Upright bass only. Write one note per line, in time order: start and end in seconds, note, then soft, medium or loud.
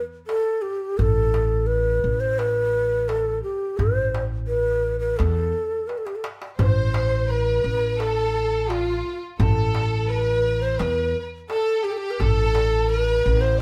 0.99 2.00 A1 medium
2.04 3.40 A1 medium
3.79 5.15 A1 medium
5.20 5.52 E2 medium
6.59 7.60 A1 loud
7.64 9.00 A1 medium
9.40 10.76 A1 loud
10.80 11.13 E2 loud
12.20 13.21 A1 medium
13.26 13.62 A1 loud